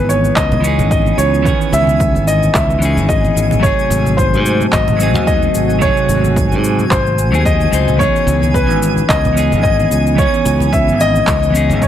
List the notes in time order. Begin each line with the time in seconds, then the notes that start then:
Already playing: G#1 E3 B3 D#4 G#4 G#5
0.09 C#5, cabasa
0.24 high conga, cabasa
0.36 C#2 D#5, kick, clap, cabasa
0.52 low conga, cabasa
0.60 E3 B3 C#4, cabasa
0.66 D#4 G#4
0.78 G#1, low conga, cabasa
0.91 D#5, kick, cabasa
1.06 high conga, cabasa
1.18 C#2 C#5, cabasa
1.34 cabasa
1.42 E3 B3 C#4, kick, cabasa
1.47 D#3 G#4
1.61 cabasa
1.72 C#2 E5, cabasa
1.87 high conga, cabasa
2.00 kick, cabasa
2.15 G#1, cabasa
2.27 D#5, cabasa
2.42 high conga, cabasa
2.54 C#2 E5, kick, clap, cabasa
2.70 cabasa
2.79 E3 B3 C#4, cabasa
2.83 D#4 G#4
2.97 G#1, cabasa
3.09 D#5, kick, cabasa
3.25 high conga, cabasa
3.36 G#1, cabasa
3.51 low conga, cabasa
3.60 C3 F#3 A3 F#4 C#5, kick
3.64 D#4 G#4, cabasa
3.79 cabasa
3.90 G#1, cabasa
4.05 high conga, cabasa
4.17 C5, kick, cabasa
4.33 G#2, cabasa
4.46 cabasa
4.61 high conga, cabasa
4.72 G#1 D#5, kick, clap, cabasa
4.88 low conga, cabasa
4.97 F#3 C4, cabasa
5.02 D#4 G#4
5.14 D#2, low conga, cabasa
5.27 D#5, kick, cabasa
5.42 high conga, cabasa
5.54 G#1, cabasa
5.70 cabasa
5.79 C3 F#3 A3 C#5, kick, cabasa
5.84 D#4 G#4
5.97 cabasa
6.09 G#1, cabasa
6.24 high conga, cabasa
6.36 kick, cabasa
6.52 G#2, cabasa
6.64 cabasa
6.78 high conga, cabasa
6.90 G#1 C5, kick, clap, cabasa
7.07 cabasa
7.18 cabasa
7.32 D#2 F#3 A3 C4 D#4 G#4, cabasa
7.45 D#5, kick, cabasa
7.60 high conga, cabasa
7.71 C#2 F#3 A3 C4 D#4 C5, cabasa
7.88 low conga, cabasa
7.97 E3 B3 C#4 C#5, kick, cabasa
8.01 D#4 G#4
8.16 cabasa
8.27 C#2, cabasa
8.43 high conga, cabasa
8.54 B4, kick, cabasa
8.69 G#1, cabasa
8.83 cabasa
8.97 high conga, cabasa
9.09 C#2 D#5, kick, clap, cabasa
9.25 low conga, cabasa
9.33 E3 B3 C#4
9.37 D#4 G#4, cabasa
9.52 G#1, low conga, cabasa
9.63 D#5, kick, cabasa
9.80 high conga, cabasa
9.91 C#2, cabasa
10.07 cabasa
10.15 E3 B3 C#4 C#5, kick, cabasa
10.20 D#4 G#4
10.34 cabasa
10.46 C#2, cabasa
10.60 high conga, cabasa
10.73 E5, kick, cabasa
10.88 G#1, cabasa
11.00 D#5, cabasa
11.16 high conga, cabasa
11.27 C#2, kick, clap, cabasa
11.43 cabasa
11.50 E3 B3 C#4
11.55 D#4 G#4, cabasa
11.69 G#1, cabasa
11.82 C#5, kick, cabasa